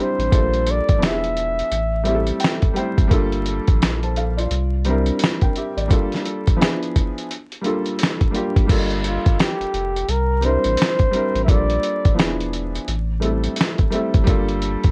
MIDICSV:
0, 0, Header, 1, 5, 480
1, 0, Start_track
1, 0, Tempo, 697674
1, 220, Time_signature, 4, 2, 24, 8
1, 10260, End_track
2, 0, Start_track
2, 0, Title_t, "Flugelhorn"
2, 0, Program_c, 0, 56
2, 12, Note_on_c, 0, 72, 96
2, 489, Note_on_c, 0, 74, 100
2, 499, Note_off_c, 0, 72, 0
2, 728, Note_on_c, 0, 76, 93
2, 738, Note_off_c, 0, 74, 0
2, 1674, Note_off_c, 0, 76, 0
2, 6242, Note_on_c, 0, 65, 73
2, 6455, Note_off_c, 0, 65, 0
2, 6473, Note_on_c, 0, 67, 85
2, 6949, Note_on_c, 0, 70, 88
2, 6959, Note_off_c, 0, 67, 0
2, 7192, Note_on_c, 0, 72, 104
2, 7203, Note_off_c, 0, 70, 0
2, 7870, Note_off_c, 0, 72, 0
2, 7876, Note_on_c, 0, 76, 72
2, 7913, Note_on_c, 0, 74, 110
2, 7923, Note_off_c, 0, 76, 0
2, 8387, Note_off_c, 0, 74, 0
2, 10260, End_track
3, 0, Start_track
3, 0, Title_t, "Felt piano"
3, 0, Program_c, 1, 0
3, 0, Control_c, 1, 64, 127
3, 0, Note_on_c, 1, 55, 64
3, 0, Note_on_c, 1, 60, 63
3, 0, Note_on_c, 1, 62, 61
3, 0, Note_on_c, 1, 64, 60
3, 0, Note_on_c, 1, 67, 70
3, 0, Note_on_c, 1, 70, 74
3, 198, Note_off_c, 1, 55, 0
3, 208, Note_on_c, 1, 55, 69
3, 214, Note_off_c, 1, 62, 0
3, 216, Note_on_c, 1, 57, 54
3, 217, Note_off_c, 1, 60, 0
3, 224, Note_on_c, 1, 62, 71
3, 226, Note_off_c, 1, 64, 0
3, 229, Control_c, 1, 64, 0
3, 230, Note_off_c, 1, 67, 0
3, 231, Note_on_c, 1, 65, 68
3, 232, Note_off_c, 1, 70, 0
3, 241, Note_on_c, 1, 69, 86
3, 259, Note_on_c, 1, 58, 69
3, 273, Note_off_c, 1, 57, 0
3, 354, Control_c, 1, 64, 127
3, 669, Note_off_c, 1, 55, 0
3, 677, Note_off_c, 1, 62, 0
3, 678, Note_on_c, 1, 53, 71
3, 681, Note_off_c, 1, 65, 0
3, 684, Note_on_c, 1, 59, 63
3, 685, Note_off_c, 1, 69, 0
3, 694, Note_off_c, 1, 58, 0
3, 694, Note_on_c, 1, 62, 69
3, 702, Note_on_c, 1, 64, 62
3, 710, Control_c, 1, 64, 0
3, 711, Note_on_c, 1, 67, 69
3, 754, Note_on_c, 1, 68, 77
3, 761, Note_off_c, 1, 67, 0
3, 845, Control_c, 1, 64, 127
3, 1144, Note_off_c, 1, 53, 0
3, 1147, Note_off_c, 1, 59, 0
3, 1152, Note_off_c, 1, 62, 0
3, 1156, Note_off_c, 1, 64, 0
3, 1182, Note_off_c, 1, 68, 0
3, 1189, Control_c, 1, 64, 0
3, 1302, Control_c, 1, 64, 127
3, 1400, Note_on_c, 1, 55, 80
3, 1408, Note_on_c, 1, 57, 69
3, 1416, Note_on_c, 1, 60, 69
3, 1417, Note_on_c, 1, 76, 66
3, 1426, Note_on_c, 1, 64, 70
3, 1433, Note_on_c, 1, 67, 70
3, 1478, Note_on_c, 1, 69, 93
3, 1482, Note_off_c, 1, 67, 0
3, 1642, Note_off_c, 1, 76, 0
3, 1653, Note_on_c, 1, 79, 73
3, 1865, Note_off_c, 1, 55, 0
3, 1869, Note_off_c, 1, 57, 0
3, 1873, Note_off_c, 1, 60, 0
3, 1878, Note_off_c, 1, 64, 0
3, 1880, Note_off_c, 1, 79, 0
3, 1883, Note_on_c, 1, 55, 87
3, 1890, Note_on_c, 1, 57, 74
3, 1900, Note_on_c, 1, 60, 75
3, 1901, Note_on_c, 1, 79, 71
3, 1904, Note_off_c, 1, 69, 0
3, 1908, Note_on_c, 1, 64, 72
3, 1916, Note_on_c, 1, 72, 91
3, 2106, Note_off_c, 1, 55, 0
3, 2117, Note_on_c, 1, 55, 104
3, 2123, Note_off_c, 1, 57, 0
3, 2124, Note_off_c, 1, 79, 0
3, 2125, Note_on_c, 1, 58, 104
3, 2128, Note_off_c, 1, 60, 0
3, 2131, Note_off_c, 1, 64, 0
3, 2134, Note_on_c, 1, 62, 98
3, 2135, Note_off_c, 1, 72, 0
3, 2142, Note_on_c, 1, 65, 95
3, 2150, Note_on_c, 1, 69, 120
3, 2151, Control_c, 1, 64, 0
3, 2289, Control_c, 1, 64, 127
3, 2621, Note_off_c, 1, 65, 0
3, 2625, Note_off_c, 1, 69, 0
3, 2775, Note_on_c, 1, 81, 67
3, 2779, Note_on_c, 1, 72, 48
3, 2859, Note_off_c, 1, 81, 0
3, 2861, Note_off_c, 1, 72, 0
3, 2871, Note_on_c, 1, 77, 73
3, 2876, Note_on_c, 1, 69, 54
3, 3007, Note_off_c, 1, 77, 0
3, 3010, Note_off_c, 1, 69, 0
3, 3010, Note_on_c, 1, 74, 68
3, 3015, Note_on_c, 1, 65, 55
3, 3038, Note_off_c, 1, 55, 0
3, 3042, Note_off_c, 1, 58, 0
3, 3047, Note_off_c, 1, 62, 0
3, 3110, Control_c, 1, 64, 0
3, 3236, Control_c, 1, 64, 127
3, 3237, Note_off_c, 1, 74, 0
3, 3240, Note_off_c, 1, 65, 0
3, 3336, Note_on_c, 1, 55, 82
3, 3344, Note_on_c, 1, 60, 79
3, 3353, Note_on_c, 1, 62, 70
3, 3362, Note_on_c, 1, 64, 72
3, 3372, Note_on_c, 1, 70, 81
3, 3596, Note_off_c, 1, 70, 0
3, 3734, Note_on_c, 1, 79, 57
3, 3738, Note_on_c, 1, 70, 52
3, 3793, Note_off_c, 1, 55, 0
3, 3797, Note_off_c, 1, 60, 0
3, 3801, Note_off_c, 1, 62, 0
3, 3806, Note_off_c, 1, 64, 0
3, 3818, Note_off_c, 1, 79, 0
3, 3821, Note_off_c, 1, 70, 0
3, 3833, Note_on_c, 1, 76, 61
3, 3835, Note_on_c, 1, 67, 60
3, 3968, Note_off_c, 1, 76, 0
3, 3969, Note_off_c, 1, 67, 0
3, 3971, Note_on_c, 1, 74, 64
3, 4044, Note_on_c, 1, 55, 85
3, 4050, Note_on_c, 1, 58, 66
3, 4061, Note_on_c, 1, 62, 85
3, 4068, Note_on_c, 1, 65, 84
3, 4069, Control_c, 1, 64, 0
3, 4077, Note_on_c, 1, 69, 88
3, 4178, Control_c, 1, 64, 127
3, 4198, Note_off_c, 1, 74, 0
3, 4507, Note_off_c, 1, 55, 0
3, 4510, Note_off_c, 1, 58, 0
3, 4515, Note_off_c, 1, 62, 0
3, 4517, Note_on_c, 1, 53, 87
3, 4519, Note_off_c, 1, 65, 0
3, 4523, Note_off_c, 1, 69, 0
3, 4524, Note_on_c, 1, 59, 77
3, 4532, Note_on_c, 1, 62, 82
3, 4541, Note_on_c, 1, 64, 74
3, 4549, Control_c, 1, 64, 0
3, 4550, Note_on_c, 1, 68, 96
3, 4692, Control_c, 1, 64, 127
3, 4983, Note_off_c, 1, 53, 0
3, 4987, Note_off_c, 1, 59, 0
3, 4991, Note_off_c, 1, 62, 0
3, 4995, Note_off_c, 1, 64, 0
3, 5000, Note_off_c, 1, 68, 0
3, 5028, Control_c, 1, 64, 0
3, 5139, Control_c, 1, 64, 127
3, 5239, Note_on_c, 1, 55, 72
3, 5249, Note_on_c, 1, 58, 73
3, 5256, Note_on_c, 1, 62, 68
3, 5267, Note_on_c, 1, 65, 72
3, 5274, Note_on_c, 1, 69, 88
3, 5704, Note_off_c, 1, 55, 0
3, 5709, Note_off_c, 1, 58, 0
3, 5713, Note_off_c, 1, 62, 0
3, 5717, Note_on_c, 1, 55, 80
3, 5718, Note_off_c, 1, 65, 0
3, 5722, Note_off_c, 1, 69, 0
3, 5725, Note_on_c, 1, 58, 81
3, 5732, Note_on_c, 1, 62, 76
3, 5742, Note_on_c, 1, 65, 70
3, 5751, Note_on_c, 1, 67, 94
3, 5954, Note_off_c, 1, 55, 0
3, 5960, Note_off_c, 1, 58, 0
3, 5963, Note_off_c, 1, 62, 0
3, 5964, Note_on_c, 1, 55, 91
3, 5968, Note_off_c, 1, 65, 0
3, 5972, Note_on_c, 1, 58, 81
3, 5973, Note_off_c, 1, 67, 0
3, 5982, Note_on_c, 1, 62, 78
3, 5990, Control_c, 1, 64, 0
3, 5990, Note_on_c, 1, 65, 84
3, 5999, Note_on_c, 1, 69, 87
3, 6115, Control_c, 1, 64, 127
3, 6881, Note_off_c, 1, 55, 0
3, 6886, Note_off_c, 1, 58, 0
3, 6891, Note_off_c, 1, 62, 0
3, 6894, Note_off_c, 1, 65, 0
3, 6899, Note_off_c, 1, 69, 0
3, 6949, Control_c, 1, 64, 0
3, 7080, Control_c, 1, 64, 127
3, 7162, Note_on_c, 1, 55, 70
3, 7171, Note_on_c, 1, 60, 63
3, 7179, Note_on_c, 1, 62, 65
3, 7188, Note_on_c, 1, 64, 62
3, 7197, Note_on_c, 1, 70, 77
3, 7626, Note_off_c, 1, 55, 0
3, 7630, Note_off_c, 1, 60, 0
3, 7634, Note_off_c, 1, 62, 0
3, 7639, Note_off_c, 1, 64, 0
3, 7643, Note_off_c, 1, 70, 0
3, 7645, Note_on_c, 1, 55, 90
3, 7653, Note_on_c, 1, 60, 71
3, 7660, Note_on_c, 1, 62, 73
3, 7670, Note_on_c, 1, 64, 72
3, 7678, Note_on_c, 1, 70, 93
3, 7876, Note_off_c, 1, 55, 0
3, 7886, Note_on_c, 1, 55, 77
3, 7894, Note_off_c, 1, 62, 0
3, 7896, Note_on_c, 1, 58, 71
3, 7897, Note_off_c, 1, 60, 0
3, 7905, Note_off_c, 1, 64, 0
3, 7905, Note_on_c, 1, 62, 74
3, 7909, Note_off_c, 1, 70, 0
3, 7910, Control_c, 1, 64, 0
3, 7912, Note_on_c, 1, 65, 67
3, 7919, Note_on_c, 1, 69, 83
3, 8036, Control_c, 1, 64, 127
3, 8348, Note_off_c, 1, 55, 0
3, 8353, Note_off_c, 1, 58, 0
3, 8355, Note_on_c, 1, 53, 69
3, 8357, Note_off_c, 1, 62, 0
3, 8361, Note_off_c, 1, 65, 0
3, 8362, Note_on_c, 1, 59, 74
3, 8364, Note_off_c, 1, 69, 0
3, 8371, Note_on_c, 1, 62, 72
3, 8380, Note_on_c, 1, 64, 69
3, 8390, Control_c, 1, 64, 0
3, 8390, Note_on_c, 1, 68, 80
3, 8503, Control_c, 1, 64, 127
3, 8822, Note_off_c, 1, 53, 0
3, 8826, Note_off_c, 1, 59, 0
3, 8830, Note_off_c, 1, 62, 0
3, 8835, Note_off_c, 1, 64, 0
3, 8840, Note_off_c, 1, 68, 0
3, 8868, Control_c, 1, 64, 0
3, 8999, Control_c, 1, 64, 127
3, 9081, Note_on_c, 1, 55, 63
3, 9088, Note_on_c, 1, 57, 65
3, 9097, Note_on_c, 1, 60, 56
3, 9108, Note_on_c, 1, 64, 68
3, 9114, Note_on_c, 1, 69, 77
3, 9545, Note_off_c, 1, 55, 0
3, 9549, Note_off_c, 1, 57, 0
3, 9553, Note_off_c, 1, 60, 0
3, 9559, Note_off_c, 1, 64, 0
3, 9562, Note_off_c, 1, 69, 0
3, 9566, Note_on_c, 1, 55, 89
3, 9574, Note_on_c, 1, 57, 78
3, 9583, Note_on_c, 1, 60, 80
3, 9591, Note_on_c, 1, 64, 77
3, 9597, Note_on_c, 1, 69, 88
3, 9785, Note_off_c, 1, 55, 0
3, 9795, Note_on_c, 1, 55, 118
3, 9803, Note_on_c, 1, 58, 103
3, 9805, Note_off_c, 1, 57, 0
3, 9809, Note_off_c, 1, 60, 0
3, 9813, Note_off_c, 1, 64, 0
3, 9814, Note_on_c, 1, 62, 94
3, 9816, Note_off_c, 1, 69, 0
3, 9822, Note_on_c, 1, 65, 92
3, 9829, Control_c, 1, 64, 0
3, 9829, Note_on_c, 1, 69, 118
3, 9955, Control_c, 1, 64, 127
3, 10260, Note_off_c, 1, 55, 0
3, 10260, Note_off_c, 1, 58, 0
3, 10260, Note_off_c, 1, 62, 0
3, 10260, Note_off_c, 1, 65, 0
3, 10260, Note_off_c, 1, 69, 0
3, 10260, End_track
4, 0, Start_track
4, 0, Title_t, "Sub bass"
4, 0, Program_c, 2, 38
4, 128, Note_on_c, 2, 33, 89
4, 207, Note_off_c, 2, 33, 0
4, 224, Note_on_c, 2, 34, 90
4, 558, Note_off_c, 2, 34, 0
4, 612, Note_on_c, 2, 31, 83
4, 690, Note_off_c, 2, 31, 0
4, 701, Note_on_c, 2, 28, 100
4, 1115, Note_off_c, 2, 28, 0
4, 1180, Note_on_c, 2, 33, 102
4, 1595, Note_off_c, 2, 33, 0
4, 2049, Note_on_c, 2, 30, 95
4, 2128, Note_off_c, 2, 30, 0
4, 2140, Note_on_c, 2, 31, 94
4, 2476, Note_off_c, 2, 31, 0
4, 2534, Note_on_c, 2, 34, 88
4, 3075, Note_off_c, 2, 34, 0
4, 3100, Note_on_c, 2, 36, 101
4, 3515, Note_off_c, 2, 36, 0
4, 3971, Note_on_c, 2, 33, 88
4, 4049, Note_off_c, 2, 33, 0
4, 5982, Note_on_c, 2, 31, 95
4, 6317, Note_off_c, 2, 31, 0
4, 6373, Note_on_c, 2, 31, 84
4, 6450, Note_off_c, 2, 31, 0
4, 6607, Note_on_c, 2, 29, 51
4, 6644, Note_off_c, 2, 29, 0
4, 6699, Note_on_c, 2, 29, 87
4, 6907, Note_off_c, 2, 29, 0
4, 6938, Note_on_c, 2, 36, 99
4, 7275, Note_off_c, 2, 36, 0
4, 7326, Note_on_c, 2, 33, 88
4, 7406, Note_off_c, 2, 33, 0
4, 7809, Note_on_c, 2, 33, 89
4, 7888, Note_off_c, 2, 33, 0
4, 7901, Note_on_c, 2, 34, 102
4, 8108, Note_off_c, 2, 34, 0
4, 8384, Note_on_c, 2, 28, 94
4, 8797, Note_off_c, 2, 28, 0
4, 8861, Note_on_c, 2, 33, 100
4, 9275, Note_off_c, 2, 33, 0
4, 9731, Note_on_c, 2, 30, 90
4, 9809, Note_off_c, 2, 30, 0
4, 9822, Note_on_c, 2, 31, 99
4, 10157, Note_off_c, 2, 31, 0
4, 10214, Note_on_c, 2, 31, 86
4, 10260, Note_off_c, 2, 31, 0
4, 10260, End_track
5, 0, Start_track
5, 0, Title_t, "Drums"
5, 136, Note_on_c, 9, 42, 41
5, 204, Note_off_c, 9, 42, 0
5, 222, Note_on_c, 9, 36, 108
5, 224, Note_on_c, 9, 42, 75
5, 291, Note_off_c, 9, 36, 0
5, 293, Note_off_c, 9, 42, 0
5, 369, Note_on_c, 9, 42, 33
5, 438, Note_off_c, 9, 42, 0
5, 458, Note_on_c, 9, 42, 65
5, 527, Note_off_c, 9, 42, 0
5, 610, Note_on_c, 9, 42, 45
5, 613, Note_on_c, 9, 36, 94
5, 679, Note_off_c, 9, 42, 0
5, 682, Note_off_c, 9, 36, 0
5, 705, Note_on_c, 9, 42, 68
5, 710, Note_on_c, 9, 38, 112
5, 714, Note_on_c, 9, 26, 89
5, 774, Note_off_c, 9, 42, 0
5, 778, Note_off_c, 9, 38, 0
5, 782, Note_off_c, 9, 26, 0
5, 851, Note_on_c, 9, 42, 35
5, 920, Note_off_c, 9, 42, 0
5, 940, Note_on_c, 9, 42, 58
5, 1009, Note_off_c, 9, 42, 0
5, 1094, Note_on_c, 9, 42, 47
5, 1163, Note_off_c, 9, 42, 0
5, 1181, Note_on_c, 9, 42, 73
5, 1249, Note_off_c, 9, 42, 0
5, 1412, Note_on_c, 9, 42, 56
5, 1481, Note_off_c, 9, 42, 0
5, 1560, Note_on_c, 9, 42, 43
5, 1629, Note_off_c, 9, 42, 0
5, 1650, Note_on_c, 9, 42, 81
5, 1681, Note_on_c, 9, 38, 110
5, 1685, Note_on_c, 9, 26, 87
5, 1719, Note_off_c, 9, 42, 0
5, 1750, Note_off_c, 9, 38, 0
5, 1754, Note_off_c, 9, 26, 0
5, 1802, Note_on_c, 9, 42, 33
5, 1806, Note_on_c, 9, 36, 89
5, 1871, Note_off_c, 9, 42, 0
5, 1875, Note_off_c, 9, 36, 0
5, 1900, Note_on_c, 9, 42, 57
5, 1969, Note_off_c, 9, 42, 0
5, 2049, Note_on_c, 9, 36, 99
5, 2051, Note_on_c, 9, 42, 44
5, 2118, Note_off_c, 9, 36, 0
5, 2120, Note_off_c, 9, 42, 0
5, 2139, Note_on_c, 9, 36, 105
5, 2141, Note_on_c, 9, 42, 75
5, 2208, Note_off_c, 9, 36, 0
5, 2209, Note_off_c, 9, 42, 0
5, 2286, Note_on_c, 9, 42, 31
5, 2355, Note_off_c, 9, 42, 0
5, 2379, Note_on_c, 9, 42, 65
5, 2447, Note_off_c, 9, 42, 0
5, 2529, Note_on_c, 9, 42, 46
5, 2532, Note_on_c, 9, 36, 91
5, 2597, Note_off_c, 9, 42, 0
5, 2601, Note_off_c, 9, 36, 0
5, 2629, Note_on_c, 9, 42, 68
5, 2633, Note_on_c, 9, 38, 111
5, 2637, Note_on_c, 9, 26, 91
5, 2697, Note_off_c, 9, 42, 0
5, 2702, Note_off_c, 9, 38, 0
5, 2706, Note_off_c, 9, 26, 0
5, 2773, Note_on_c, 9, 42, 34
5, 2841, Note_off_c, 9, 42, 0
5, 2865, Note_on_c, 9, 42, 57
5, 2933, Note_off_c, 9, 42, 0
5, 3017, Note_on_c, 9, 42, 45
5, 3086, Note_off_c, 9, 42, 0
5, 3102, Note_on_c, 9, 42, 80
5, 3171, Note_off_c, 9, 42, 0
5, 3334, Note_on_c, 9, 42, 56
5, 3403, Note_off_c, 9, 42, 0
5, 3481, Note_on_c, 9, 42, 43
5, 3550, Note_off_c, 9, 42, 0
5, 3572, Note_on_c, 9, 42, 89
5, 3603, Note_on_c, 9, 38, 110
5, 3607, Note_on_c, 9, 26, 82
5, 3640, Note_off_c, 9, 42, 0
5, 3672, Note_off_c, 9, 38, 0
5, 3675, Note_off_c, 9, 26, 0
5, 3725, Note_on_c, 9, 42, 33
5, 3728, Note_on_c, 9, 36, 90
5, 3794, Note_off_c, 9, 42, 0
5, 3797, Note_off_c, 9, 36, 0
5, 3823, Note_on_c, 9, 42, 57
5, 3892, Note_off_c, 9, 42, 0
5, 3975, Note_on_c, 9, 42, 40
5, 4044, Note_off_c, 9, 42, 0
5, 4063, Note_on_c, 9, 36, 115
5, 4064, Note_on_c, 9, 42, 77
5, 4132, Note_off_c, 9, 36, 0
5, 4133, Note_off_c, 9, 42, 0
5, 4212, Note_on_c, 9, 42, 32
5, 4227, Note_on_c, 9, 38, 34
5, 4281, Note_off_c, 9, 42, 0
5, 4296, Note_off_c, 9, 38, 0
5, 4304, Note_on_c, 9, 42, 66
5, 4372, Note_off_c, 9, 42, 0
5, 4453, Note_on_c, 9, 42, 45
5, 4455, Note_on_c, 9, 36, 94
5, 4522, Note_off_c, 9, 42, 0
5, 4524, Note_off_c, 9, 36, 0
5, 4551, Note_on_c, 9, 42, 67
5, 4556, Note_on_c, 9, 38, 111
5, 4559, Note_on_c, 9, 26, 88
5, 4620, Note_off_c, 9, 42, 0
5, 4624, Note_off_c, 9, 38, 0
5, 4628, Note_off_c, 9, 26, 0
5, 4696, Note_on_c, 9, 42, 35
5, 4765, Note_off_c, 9, 42, 0
5, 4787, Note_on_c, 9, 42, 60
5, 4788, Note_on_c, 9, 36, 84
5, 4856, Note_off_c, 9, 42, 0
5, 4857, Note_off_c, 9, 36, 0
5, 4940, Note_on_c, 9, 42, 47
5, 5009, Note_off_c, 9, 42, 0
5, 5028, Note_on_c, 9, 42, 75
5, 5097, Note_off_c, 9, 42, 0
5, 5173, Note_on_c, 9, 42, 34
5, 5242, Note_off_c, 9, 42, 0
5, 5259, Note_on_c, 9, 42, 58
5, 5328, Note_off_c, 9, 42, 0
5, 5406, Note_on_c, 9, 42, 43
5, 5475, Note_off_c, 9, 42, 0
5, 5496, Note_on_c, 9, 42, 86
5, 5527, Note_on_c, 9, 38, 105
5, 5530, Note_on_c, 9, 26, 90
5, 5564, Note_off_c, 9, 42, 0
5, 5595, Note_off_c, 9, 38, 0
5, 5599, Note_off_c, 9, 26, 0
5, 5647, Note_on_c, 9, 42, 34
5, 5649, Note_on_c, 9, 36, 88
5, 5716, Note_off_c, 9, 42, 0
5, 5718, Note_off_c, 9, 36, 0
5, 5741, Note_on_c, 9, 42, 61
5, 5810, Note_off_c, 9, 42, 0
5, 5891, Note_on_c, 9, 36, 99
5, 5893, Note_on_c, 9, 42, 41
5, 5960, Note_off_c, 9, 36, 0
5, 5962, Note_off_c, 9, 42, 0
5, 5981, Note_on_c, 9, 36, 109
5, 5981, Note_on_c, 9, 49, 88
5, 5982, Note_on_c, 9, 42, 79
5, 6050, Note_off_c, 9, 36, 0
5, 6050, Note_off_c, 9, 49, 0
5, 6051, Note_off_c, 9, 42, 0
5, 6126, Note_on_c, 9, 42, 35
5, 6194, Note_off_c, 9, 42, 0
5, 6220, Note_on_c, 9, 42, 70
5, 6289, Note_off_c, 9, 42, 0
5, 6371, Note_on_c, 9, 42, 45
5, 6372, Note_on_c, 9, 36, 94
5, 6439, Note_off_c, 9, 42, 0
5, 6441, Note_off_c, 9, 36, 0
5, 6464, Note_on_c, 9, 42, 69
5, 6469, Note_on_c, 9, 38, 116
5, 6473, Note_on_c, 9, 26, 87
5, 6533, Note_off_c, 9, 42, 0
5, 6538, Note_off_c, 9, 38, 0
5, 6542, Note_off_c, 9, 26, 0
5, 6612, Note_on_c, 9, 42, 35
5, 6681, Note_off_c, 9, 42, 0
5, 6702, Note_on_c, 9, 42, 56
5, 6770, Note_off_c, 9, 42, 0
5, 6855, Note_on_c, 9, 42, 46
5, 6924, Note_off_c, 9, 42, 0
5, 6939, Note_on_c, 9, 42, 82
5, 7008, Note_off_c, 9, 42, 0
5, 7171, Note_on_c, 9, 42, 59
5, 7240, Note_off_c, 9, 42, 0
5, 7321, Note_on_c, 9, 42, 46
5, 7390, Note_off_c, 9, 42, 0
5, 7412, Note_on_c, 9, 42, 87
5, 7443, Note_on_c, 9, 38, 109
5, 7447, Note_on_c, 9, 26, 88
5, 7480, Note_off_c, 9, 42, 0
5, 7512, Note_off_c, 9, 38, 0
5, 7515, Note_off_c, 9, 26, 0
5, 7561, Note_on_c, 9, 42, 36
5, 7565, Note_on_c, 9, 36, 93
5, 7630, Note_off_c, 9, 42, 0
5, 7634, Note_off_c, 9, 36, 0
5, 7660, Note_on_c, 9, 42, 60
5, 7729, Note_off_c, 9, 42, 0
5, 7813, Note_on_c, 9, 42, 42
5, 7881, Note_off_c, 9, 42, 0
5, 7900, Note_on_c, 9, 36, 110
5, 7903, Note_on_c, 9, 42, 76
5, 7969, Note_off_c, 9, 36, 0
5, 7972, Note_off_c, 9, 42, 0
5, 8048, Note_on_c, 9, 42, 33
5, 8116, Note_off_c, 9, 42, 0
5, 8140, Note_on_c, 9, 42, 65
5, 8209, Note_off_c, 9, 42, 0
5, 8290, Note_on_c, 9, 42, 44
5, 8292, Note_on_c, 9, 36, 98
5, 8359, Note_off_c, 9, 42, 0
5, 8361, Note_off_c, 9, 36, 0
5, 8385, Note_on_c, 9, 42, 72
5, 8390, Note_on_c, 9, 38, 108
5, 8394, Note_on_c, 9, 26, 91
5, 8454, Note_off_c, 9, 42, 0
5, 8459, Note_off_c, 9, 38, 0
5, 8463, Note_off_c, 9, 26, 0
5, 8534, Note_on_c, 9, 42, 35
5, 8603, Note_off_c, 9, 42, 0
5, 8623, Note_on_c, 9, 42, 58
5, 8692, Note_off_c, 9, 42, 0
5, 8775, Note_on_c, 9, 42, 46
5, 8844, Note_off_c, 9, 42, 0
5, 8861, Note_on_c, 9, 42, 75
5, 8930, Note_off_c, 9, 42, 0
5, 9096, Note_on_c, 9, 42, 58
5, 9165, Note_off_c, 9, 42, 0
5, 9244, Note_on_c, 9, 42, 45
5, 9313, Note_off_c, 9, 42, 0
5, 9331, Note_on_c, 9, 42, 87
5, 9362, Note_on_c, 9, 38, 112
5, 9366, Note_on_c, 9, 26, 92
5, 9400, Note_off_c, 9, 42, 0
5, 9431, Note_off_c, 9, 38, 0
5, 9434, Note_off_c, 9, 26, 0
5, 9482, Note_on_c, 9, 42, 34
5, 9487, Note_on_c, 9, 36, 89
5, 9551, Note_off_c, 9, 42, 0
5, 9556, Note_off_c, 9, 36, 0
5, 9578, Note_on_c, 9, 42, 59
5, 9647, Note_off_c, 9, 42, 0
5, 9728, Note_on_c, 9, 42, 42
5, 9730, Note_on_c, 9, 36, 101
5, 9797, Note_off_c, 9, 42, 0
5, 9799, Note_off_c, 9, 36, 0
5, 9818, Note_on_c, 9, 42, 83
5, 9821, Note_on_c, 9, 36, 111
5, 9886, Note_off_c, 9, 42, 0
5, 9889, Note_off_c, 9, 36, 0
5, 9966, Note_on_c, 9, 42, 31
5, 10035, Note_off_c, 9, 42, 0
5, 10058, Note_on_c, 9, 42, 67
5, 10126, Note_off_c, 9, 42, 0
5, 10207, Note_on_c, 9, 42, 45
5, 10213, Note_on_c, 9, 36, 92
5, 10260, Note_off_c, 9, 36, 0
5, 10260, Note_off_c, 9, 42, 0
5, 10260, End_track
0, 0, End_of_file